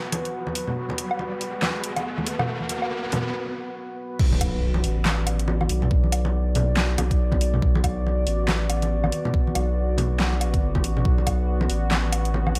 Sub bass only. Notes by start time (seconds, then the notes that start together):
4.20 B1
4.84 A1
5.70 B1
6.98 B1
7.62 B1
8.27 A1
9.55 B1
10.84 A1
11.05 B1
11.70 A1
12.55 B1